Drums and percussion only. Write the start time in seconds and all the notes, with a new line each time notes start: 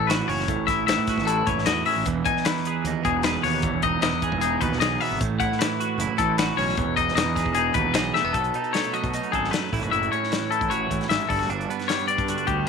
0.10 snare, closed hi-hat
0.29 open hi-hat
0.40 snare
0.48 kick, closed hi-hat
0.68 kick, snare, closed hi-hat
0.88 snare, closed hi-hat
1.07 kick, snare, closed hi-hat
1.18 kick, snare
1.28 closed hi-hat
1.47 kick, closed hi-hat
1.58 snare
1.66 snare, closed hi-hat
1.86 open hi-hat
2.06 kick, closed hi-hat
2.25 kick, closed hi-hat
2.37 snare
2.45 snare, closed hi-hat
2.57 snare
2.65 closed hi-hat
2.85 closed hi-hat
3.05 kick, closed hi-hat
3.23 snare, closed hi-hat
3.44 open hi-hat
3.62 kick, closed hi-hat
3.82 kick, closed hi-hat
4.02 snare, closed hi-hat
4.22 kick, closed hi-hat
4.32 kick
4.41 closed hi-hat
4.61 kick, closed hi-hat
4.72 snare
4.81 snare, closed hi-hat
5.01 open hi-hat
5.21 kick, closed hi-hat
5.40 kick, closed hi-hat
5.52 snare
5.61 snare, closed hi-hat
5.81 closed hi-hat
6.00 closed hi-hat
6.18 kick, closed hi-hat
6.38 snare, closed hi-hat
6.58 open hi-hat
6.69 snare
6.77 kick, closed hi-hat
6.97 kick, closed hi-hat
7.08 snare
7.17 snare, closed hi-hat
7.36 kick, snare, closed hi-hat
7.46 kick
7.55 closed hi-hat
7.74 kick, closed hi-hat
7.94 snare, closed hi-hat
8.15 snare
8.34 kick, closed hi-hat
8.44 closed hi-hat
8.54 closed hi-hat
8.64 closed hi-hat
8.74 snare, closed hi-hat
8.84 closed hi-hat
8.94 closed hi-hat
9.04 kick, closed hi-hat
9.13 closed hi-hat
9.23 closed hi-hat
9.33 kick, closed hi-hat
9.44 snare
9.53 snare, closed hi-hat
9.73 kick, open hi-hat
9.83 closed hi-hat
9.93 closed hi-hat
10.03 closed hi-hat
10.13 closed hi-hat
10.23 snare
10.32 snare, closed hi-hat
10.52 closed hi-hat
10.61 kick, closed hi-hat
10.71 closed hi-hat
10.91 kick, closed hi-hat
11.01 snare, closed hi-hat
11.10 snare, closed hi-hat
11.21 closed hi-hat
11.30 kick, open hi-hat
11.42 snare
11.50 closed hi-hat
11.61 closed hi-hat
11.70 closed hi-hat
11.79 snare, closed hi-hat
11.89 snare, closed hi-hat
11.99 closed hi-hat
12.08 closed hi-hat
12.18 kick, closed hi-hat
12.28 closed hi-hat
12.38 closed hi-hat
12.47 kick, closed hi-hat